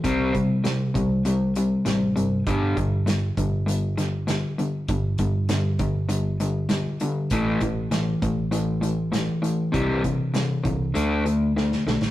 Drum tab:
HH |x-x-x-x-x-x-x-x-|x-x-x-x-x-x-x-x-|x-x-x-x-x-x-x-x-|x-x-x-x-x-x-x-x-|
SD |----o-------o---|----o-----o-o---|----o-------o---|----o-------o---|
BD |o-o---o---------|o-o---o---------|o-o---o---------|o-o---o---------|

HH |x-x-x-x-x-x-----|
SD |----o-------oooo|
BD |o-o---o---------|